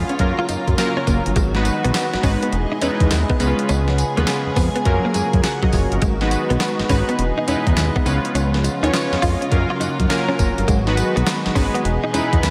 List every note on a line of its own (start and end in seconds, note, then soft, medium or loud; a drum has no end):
0.00 0.18 C#3 medium
0.00 0.18 G#3 medium
0.00 0.21 G#3 medium
0.00 0.18 B3 medium
0.00 0.21 B3 medium
0.00 0.20 C#4 medium
0.00 0.10 F4 medium
0.00 1.33 F4 medium
0.00 0.21 G#4 medium
0.00 0.21 B4 loud
0.00 0.21 F5 medium
0.00 0.21 G#5 medium
0.09 0.15 C#4 medium
0.09 0.19 F4 medium
0.09 0.37 C#5 medium
0.09 closed hi-hat medium
0.19 0.33 F#2 loud
0.19 1.35 C#3 medium
0.19 0.68 F#3 medium
0.19 2.50 F#3 medium
0.19 0.68 A#3 medium
0.19 1.35 A#3 medium
0.19 0.68 C#4 medium
0.19 0.69 F4 medium
0.19 0.69 A#4 medium
0.19 muted clean electric guitar stroke soft
0.19 kick medium
0.19 closed hi-hat medium
0.39 0.45 F4 medium
0.49 0.57 F#2 medium
0.49 0.60 D#4 medium
0.49 closed hi-hat medium
0.49 tambourine medium
0.68 0.75 F#2 loud
0.68 kick loud
0.68 closed hi-hat medium
0.77 1.34 F#3 medium
0.77 1.34 A#3 medium
0.77 1.34 C#4 medium
0.77 1.35 F4 medium
0.77 1.35 A#4 loud
0.77 muted clean electric guitar stroke soft
0.77 snare loud
0.77 clap loud
0.77 closed hi-hat medium
0.77 tambourine loud
0.97 1.03 C#4 medium
1.07 1.21 F#1 medium
1.07 1.18 A#3 medium
1.07 kick medium
1.07 closed hi-hat medium
1.07 tambourine medium
1.26 1.33 G1 loud
1.26 closed hi-hat medium
1.36 1.70 G#1 loud
1.36 2.52 D#3 medium
1.36 1.47 G#3 loud
1.36 4.82 G#3 medium
1.36 2.52 B3 medium
1.36 2.51 F#4 medium
1.36 kick loud
1.36 closed hi-hat medium
1.36 tambourine medium
1.55 2.10 G#3 medium
1.55 2.10 B3 medium
1.55 2.10 D#4 medium
1.55 2.11 F#4 medium
1.55 2.11 B4 loud
1.55 snare medium
1.65 muted clean electric guitar stroke soft
1.65 closed hi-hat medium
1.65 tambourine medium
1.84 1.92 B1 medium
1.84 1.90 B3 medium
1.84 closed hi-hat medium
1.94 muted clean electric guitar stroke soft
1.94 snare loud
1.94 clap medium
1.94 closed hi-hat medium
1.94 tambourine loud
2.14 2.18 G#1 medium
2.14 snare medium
2.23 2.37 G#1 medium
2.23 2.52 G#3 medium
2.23 2.53 B3 medium
2.23 2.35 C#4 medium
2.23 2.53 D#4 medium
2.23 2.53 F#4 medium
2.23 2.53 B4 loud
2.23 kick loud
2.23 open hi-hat medium
2.23 tambourine medium
2.42 2.49 B3 medium
2.42 closed hi-hat medium
2.53 2.66 E1 loud
2.53 3.39 B2 medium
2.53 3.39 E3 medium
2.53 3.39 G#4 medium
2.53 3.39 D#5 medium
2.53 muted clean electric guitar stroke soft
2.53 closed hi-hat medium
2.72 2.78 D#4 medium
2.82 2.90 E2 medium
2.82 3.38 G#3 medium
2.82 3.38 B3 medium
2.82 2.93 C#4 medium
2.82 3.38 D#4 medium
2.82 3.39 E4 medium
2.82 3.39 B4 loud
2.82 closed hi-hat medium
2.82 tambourine medium
3.00 3.08 E2 loud
3.00 kick loud
3.00 closed hi-hat medium
3.11 3.25 D#2 medium
3.11 muted clean electric guitar stroke soft
3.11 snare loud
3.11 clap loud
3.11 closed hi-hat medium
3.11 tambourine loud
3.30 3.36 B3 medium
3.30 kick loud
3.39 3.54 C#2 loud
3.39 4.84 C#3 medium
3.39 3.98 G#3 loud
3.39 3.98 B3 medium
3.39 4.84 B3 medium
3.39 3.51 B3 medium
3.39 3.98 C#4 medium
3.39 3.48 D#4 medium
3.39 5.99 G#4 medium
3.39 3.98 B4 loud
3.39 closed hi-hat medium
3.39 tambourine medium
3.47 4.01 F4 medium
3.59 closed hi-hat medium
3.69 4.04 C#2 loud
3.69 3.80 C#4 loud
3.69 closed hi-hat medium
3.69 tambourine medium
3.88 snare medium
3.98 muted clean electric guitar stroke soft
3.98 closed hi-hat medium
3.98 tambourine medium
4.16 4.25 D#2 loud
4.16 4.72 G#3 medium
4.16 4.23 A#3 medium
4.16 4.72 B3 medium
4.16 4.72 C#4 medium
4.16 4.72 F4 medium
4.16 4.72 B4 loud
4.16 closed hi-hat medium
4.27 muted clean electric guitar stroke soft
4.27 snare loud
4.27 clap medium
4.27 closed hi-hat medium
4.27 tambourine loud
4.47 4.50 F2 soft
4.56 4.70 F2 loud
4.56 4.68 B3 medium
4.56 kick loud
4.56 open hi-hat medium
4.56 tambourine medium
4.76 4.82 B3 medium
4.76 closed hi-hat medium
4.85 4.99 F#2 medium
4.85 6.01 C#3 medium
4.85 7.16 F#3 medium
4.85 5.34 F#3 medium
4.85 6.00 A#3 medium
4.85 5.34 A#3 medium
4.85 5.34 C#4 medium
4.85 5.35 F4 medium
4.85 5.35 A#4 medium
4.85 muted clean electric guitar stroke soft
4.85 kick loud
4.85 closed hi-hat medium
5.05 5.11 A#3 medium
5.14 5.22 F#2 medium
5.14 5.26 G#3 medium
5.14 5.42 G#5 medium
5.14 closed hi-hat medium
5.14 tambourine medium
5.33 5.41 F#2 loud
5.33 kick loud
5.33 closed hi-hat medium
5.43 5.98 F#5 medium
5.43 muted clean electric guitar stroke soft
5.43 snare loud
5.43 clap loud
5.43 closed hi-hat medium
5.43 tambourine loud
5.63 5.69 F#3 medium
5.63 5.73 F#4 medium
5.63 5.73 D#5 medium
5.63 kick loud
5.72 5.87 F#1 medium
5.72 5.84 F#3 medium
5.72 5.91 F4 medium
5.72 5.91 C#5 medium
5.72 kick medium
5.72 open hi-hat medium
5.72 tambourine medium
5.92 5.99 G1 medium
5.92 6.20 C#4 medium
5.92 6.20 A#4 medium
5.92 closed hi-hat medium
6.02 6.36 G#1 loud
6.02 7.17 D#3 medium
6.02 7.17 G#3 medium
6.02 6.13 G#3 medium
6.02 7.17 B3 medium
6.02 7.17 F#4 medium
6.02 kick loud
6.02 closed hi-hat medium
6.02 tambourine medium
6.21 6.76 G#3 loud
6.21 6.76 B3 medium
6.21 6.76 D#4 medium
6.21 6.77 F#4 medium
6.21 6.77 B4 loud
6.21 snare medium
6.31 muted clean electric guitar stroke soft
6.31 closed hi-hat medium
6.31 tambourine medium
6.50 6.57 B1 loud
6.50 6.56 B3 medium
6.50 closed hi-hat medium
6.60 muted clean electric guitar stroke soft
6.60 snare loud
6.60 clap medium
6.60 closed hi-hat medium
6.60 tambourine medium
6.79 6.83 G#1 medium
6.79 snare medium
6.89 7.03 G#1 loud
6.89 7.18 G#3 medium
6.89 7.19 B3 medium
6.89 7.01 C#4 medium
6.89 7.19 D#4 medium
6.89 7.19 F#4 medium
6.89 7.19 B4 loud
6.89 kick loud
6.89 open hi-hat medium
6.89 tambourine medium
7.09 7.15 B3 medium
7.09 closed hi-hat medium
7.18 7.32 E1 loud
7.18 8.05 B2 medium
7.18 8.05 E3 medium
7.18 8.05 G#3 medium
7.18 8.05 G#4 medium
7.18 8.05 D#5 medium
7.18 muted clean electric guitar stroke soft
7.18 closed hi-hat medium
7.38 7.44 D#4 medium
7.47 7.55 E2 medium
7.47 8.04 G#3 medium
7.47 8.04 B3 medium
7.47 7.59 C#4 medium
7.47 8.04 D#4 medium
7.47 8.04 E4 medium
7.47 8.05 B4 loud
7.47 closed hi-hat medium
7.47 tambourine medium
7.67 7.74 E2 loud
7.67 kick loud
7.67 closed hi-hat medium
7.77 7.90 D#2 medium
7.77 muted clean electric guitar stroke soft
7.77 snare loud
7.77 clap loud
7.77 closed hi-hat medium
7.77 tambourine loud
7.96 8.02 B3 medium
7.96 kick loud
8.06 8.19 C#2 medium
8.06 10.65 C#3 medium
8.06 9.50 F3 medium
8.06 8.64 G#3 medium
8.06 9.50 G#3 medium
8.06 8.64 B3 medium
8.06 9.50 B3 medium
8.06 8.17 B3 medium
8.06 8.64 C#4 medium
8.06 8.14 D#4 medium
8.06 10.65 F4 medium
8.06 8.64 B4 loud
8.06 closed hi-hat medium
8.06 tambourine medium
8.13 8.68 F4 medium
8.25 closed hi-hat medium
8.35 8.69 C#2 loud
8.35 8.46 C#4 medium
8.35 closed hi-hat medium
8.35 tambourine medium
8.54 snare medium
8.64 muted clean electric guitar stroke soft
8.64 closed hi-hat medium
8.64 tambourine medium
8.83 8.90 D#2 loud
8.83 9.38 G#3 medium
8.83 9.38 B3 medium
8.83 9.38 C#4 medium
8.83 8.89 D#4 medium
8.83 9.38 F4 medium
8.83 9.39 C#5 loud
8.83 closed hi-hat medium
8.93 muted clean electric guitar stroke soft
8.93 snare loud
8.93 clap loud
8.93 closed hi-hat medium
8.93 tambourine loud
9.12 9.16 F2 medium
9.12 snare medium
9.22 9.36 F2 loud
9.22 9.34 F4 loud
9.22 9.49 D#5 medium
9.22 kick loud
9.22 open hi-hat medium
9.22 tambourine medium
9.41 9.47 C#4 medium
9.41 closed hi-hat medium
9.51 9.65 F#2 loud
9.51 10.00 F#3 medium
9.51 11.82 F#3 medium
9.51 10.00 A#3 medium
9.51 10.67 A#3 medium
9.51 10.00 C#4 medium
9.51 10.00 F4 medium
9.51 10.00 A#4 loud
9.51 9.79 F5 medium
9.51 muted clean electric guitar stroke soft
9.51 kick loud
9.51 closed hi-hat medium
9.70 9.76 F4 medium
9.80 9.88 F#2 medium
9.80 9.92 D#4 medium
9.80 10.08 F#5 medium
9.80 closed hi-hat medium
9.80 tambourine medium
10.00 10.07 F#2 medium
10.00 kick medium
10.00 closed hi-hat medium
10.09 10.66 F#3 medium
10.09 10.66 A#3 medium
10.09 10.66 C#4 medium
10.09 10.66 F4 medium
10.09 10.67 A#4 loud
10.09 10.37 G#5 medium
10.09 muted clean electric guitar stroke soft
10.09 snare loud
10.09 clap loud
10.09 closed hi-hat medium
10.09 tambourine loud
10.29 10.35 C#4 medium
10.39 10.53 F#1 medium
10.39 10.50 A#3 medium
10.39 10.66 A#5 medium
10.39 kick loud
10.39 closed hi-hat medium
10.39 tambourine medium
10.58 10.65 G1 medium
10.58 closed hi-hat medium
10.68 11.03 G#1 loud
10.68 11.83 D#3 medium
10.68 10.79 G#3 medium
10.68 11.83 G#3 medium
10.68 11.83 B3 medium
10.68 11.84 F#4 medium
10.68 kick loud
10.68 closed hi-hat medium
10.68 tambourine medium
10.87 11.42 G#3 medium
10.87 11.42 B3 medium
10.87 11.42 D#4 medium
10.87 11.43 F#4 medium
10.87 11.43 B4 loud
10.87 snare medium
10.97 muted clean electric guitar stroke soft
10.97 closed hi-hat medium
10.97 tambourine medium
11.16 11.24 B1 medium
11.16 11.22 B3 medium
11.16 closed hi-hat medium
11.27 muted clean electric guitar stroke soft
11.27 snare loud
11.27 clap loud
11.27 closed hi-hat medium
11.27 tambourine loud
11.46 11.50 G#1 medium
11.46 snare medium
11.55 11.69 G#1 medium
11.55 11.84 G#3 loud
11.55 11.84 B3 medium
11.55 11.67 C#4 medium
11.55 11.85 D#4 medium
11.55 11.85 F#4 medium
11.55 11.85 B4 loud
11.55 kick loud
11.55 open hi-hat medium
11.55 tambourine medium
11.74 11.80 B3 medium
11.74 closed hi-hat medium
11.85 11.98 E1 medium
11.85 12.50 B2 medium
11.85 12.50 E3 medium
11.85 12.50 G#3 medium
11.85 12.50 G#4 medium
11.85 12.50 D#5 medium
11.85 muted clean electric guitar stroke soft
11.85 closed hi-hat medium
12.04 12.10 D#4 medium
12.13 12.21 E2 medium
12.13 12.50 G#3 medium
12.13 12.50 B3 medium
12.13 12.25 C#4 medium
12.13 12.50 D#4 medium
12.13 12.50 E4 medium
12.13 12.50 B4 loud
12.13 closed hi-hat medium
12.13 tambourine medium
12.33 12.40 E2 loud
12.33 kick loud
12.33 closed hi-hat medium
12.43 12.50 D#2 medium
12.43 muted clean electric guitar stroke soft
12.43 snare loud
12.43 clap loud
12.43 closed hi-hat medium
12.43 tambourine loud